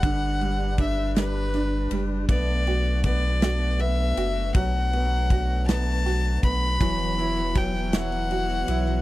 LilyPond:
<<
  \new Staff \with { instrumentName = "Violin" } { \time 6/8 \key b \phrygian \tempo 4. = 53 fis''4 e''8 b'4 r8 | d''4 d''4 e''4 | fis''4. a''4 b''8~ | b''4 g''8 fis''4. | }
  \new Staff \with { instrumentName = "Upright piano" } { \time 6/8 \key b \phrygian <d g d'>8 g8 d'8 g8 d'8 g8 | b8 fis'8 b8 fis'8 b8 fis'8 | fis8 b8 fis'8 b8 fis'8 b8 | e8 e'8 fis8 e'8 fis'8 e'8 | }
  \new Staff \with { instrumentName = "Tonewheel organ" } { \time 6/8 \key b \phrygian d'2. | b2.~ | b2.~ | b2. | }
  \new Staff \with { instrumentName = "Tonewheel organ" } { \clef bass \time 6/8 \key b \phrygian <g b'>2. | a2.~ | a2. | <e fis>2. | }
  \new Staff \with { instrumentName = "Steel-string acoustic guitar" } { \clef bass \time 6/8 \key b \phrygian r2. | r2. | r2. | fis16 fis16 e'16 fis16 b16 fis16 fis16 fis16 e'16 fis16 b16 fis16 | }
  \new Staff \with { instrumentName = "Sub bass" } { \clef bass \time 6/8 \key b \phrygian g,,2~ g,,8 fis,,8 | b,,2~ b,,8 fis,,8 | b,,2~ b,,8 b,,8 | e,,2~ e,,8 b,,8 | }
  \new DrumStaff \with { instrumentName = "Drums" } \drummode { \time 6/8 <bd cymr>8 cymr8 <bd cymr>8 <cymr sn>8 <cymr sn>8 cymr8 | <bd cymr>8 cymr8 <bd cymr>8 <cymr sn>8 cymr8 cymr8 | <bd cymr>8 cymr8 <bd cymr>8 <cymr sn>8 <cymr sn>8 <bd cymr>8 | <bd cymr>8 cymr8 <bd cymr>8 <cymr sn>8 cymr8 cymr8 | }
>>